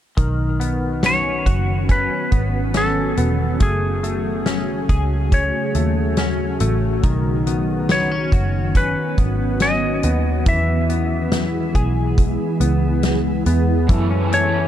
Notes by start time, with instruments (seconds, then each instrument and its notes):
0.17 picked electric bass B1, clean electric guitar D#3, ambient pad D#3 F#3 B3 C#4 F#4, kick, closed hi-hat
0.60 clean electric guitar B3, closed hi-hat
1.03 clean electric guitar C#4, electric slide guitar C#5, snare, closed hi-hat
1.46 picked electric bass F#1, clean electric guitar F#4, kick, closed hi-hat
1.89 clean electric guitar C#4, electric slide guitar B4, kick, closed hi-hat
2.32 picked electric bass G#1, clean electric guitar B3, kick, closed hi-hat
2.74 clean electric guitar C#4, electric slide guitar A4, snare, closed hi-hat
3.17 picked electric bass E1, clean electric guitar B3, closed hi-hat
3.60 picked electric bass F#1, ambient pad C#3 F#3 A3 G#4, clean electric guitar A3, electric slide guitar G#4, kick, closed hi-hat
4.03 clean electric guitar A3, closed hi-hat
4.46 clean electric guitar C#4, snare, closed hi-hat
4.89 picked electric bass C#2, clean electric guitar G#4, kick, closed hi-hat
5.32 clean electric guitar C#4, electric slide guitar C#5, kick, closed hi-hat
5.75 picked electric bass D#2, clean electric guitar A3, closed hi-hat
6.17 clean electric guitar C#4, snare, closed hi-hat
6.60 picked electric bass A1, clean electric guitar A3, closed hi-hat
7.02 picked electric bass B1, ambient pad D#3 B3 C#4, clean electric guitar D#3, kick, closed hi-hat
7.47 clean electric guitar B3, closed hi-hat
7.89 clean electric guitar B3, electric slide guitar C#5, snare, closed hi-hat
8.11 clean electric guitar C#4
8.32 picked electric bass F#1, clean electric guitar F#4, kick, closed hi-hat
8.75 clean electric guitar C#4, electric slide guitar B4, kick, closed hi-hat
9.18 picked electric bass G#1, clean electric guitar B3, kick, closed hi-hat
9.60 clean electric guitar C#4, electric slide guitar D#5, snare, closed hi-hat
10.03 picked electric bass D#2, clean electric guitar B3, closed hi-hat
10.46 picked electric bass E2, ambient pad E3 G#3 E4 G#4, clean electric guitar E3, electric slide guitar E5, kick, closed hi-hat
10.89 clean electric guitar B3, closed hi-hat
11.32 snare, closed hi-hat
11.75 picked electric bass B1, clean electric guitar G#4, kick, closed hi-hat
12.18 kick, closed hi-hat
12.60 picked electric bass C#2, clean electric guitar B3, closed hi-hat
13.03 snare, closed hi-hat
13.46 picked electric bass E2, clean electric guitar B3, closed hi-hat
13.87 overdriven electric guitar F#2 C#3 E3 A3 C#4 A4, picked electric bass F#2, clean electric guitar E3, ambient pad F#3 A3 C#4 E4 A4, kick, closed hi-hat
14.11 clean electric guitar C#4
14.31 clean electric guitar A3, overdriven electric guitar A3 C#4 A4, electric slide guitar C#5, closed hi-hat
14.35 overdriven electric guitar E3
14.54 clean electric guitar C#4